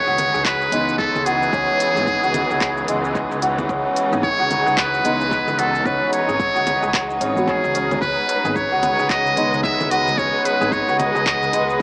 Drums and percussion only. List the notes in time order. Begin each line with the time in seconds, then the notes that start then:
0.18 closed hi-hat, low conga, shaker
0.35 shaker
0.45 kick, clap, shaker
0.62 shaker
0.72 closed hi-hat, shaker
0.89 shaker
0.99 kick, shaker
1.16 low conga, shaker
1.26 closed hi-hat, shaker
1.43 shaker
1.53 kick, shaker
1.80 closed hi-hat, shaker
1.97 shaker
2.07 kick, shaker
2.24 shaker
2.34 closed hi-hat, low conga, shaker
2.50 shaker
2.61 kick, clap, shaker
2.77 shaker
2.88 closed hi-hat, shaker
3.05 shaker
3.15 kick, shaker
3.32 shaker
3.42 closed hi-hat, shaker
3.58 low conga, shaker
3.69 kick, shaker
3.96 closed hi-hat, shaker
4.13 shaker
4.23 kick, shaker
4.51 closed hi-hat, low conga, shaker
4.67 shaker
4.77 kick, clap, shaker
4.94 shaker
5.05 closed hi-hat, shaker
5.21 shaker
5.31 kick, shaker
5.48 low conga, shaker
5.59 closed hi-hat, shaker
5.75 shaker
5.86 kick, shaker
6.13 closed hi-hat, shaker
6.29 shaker
6.40 kick, shaker
6.56 shaker
6.67 closed hi-hat, low conga, shaker
6.83 shaker
6.94 kick, clap, shaker
7.10 shaker
7.21 closed hi-hat, shaker
7.37 shaker
7.48 kick, shaker
7.64 shaker
7.75 closed hi-hat, shaker
7.91 low conga, shaker
8.02 kick, shaker
8.29 closed hi-hat, darbuka ka, darbuka tek, shaker
8.45 shaker
8.56 kick, shaker
8.83 closed hi-hat, low conga, shaker
8.99 shaker
9.10 kick, clap, shaker
9.25 darbuka dum, shaker
9.37 closed hi-hat, shaker
9.54 darbuka dum, shaker
9.64 kick, shaker
9.81 low conga, shaker
9.91 closed hi-hat, shaker
10.08 darbuka dum, shaker
10.18 kick, shaker
10.45 closed hi-hat, darbuka ka, darbuka tek, shaker
10.62 shaker
10.72 kick, shaker
10.89 shaker
10.99 closed hi-hat, darbuka dum, low conga, shaker
11.16 shaker
11.26 kick, clap, shaker
11.42 darbuka dum, shaker
11.53 closed hi-hat, shaker
11.70 shaker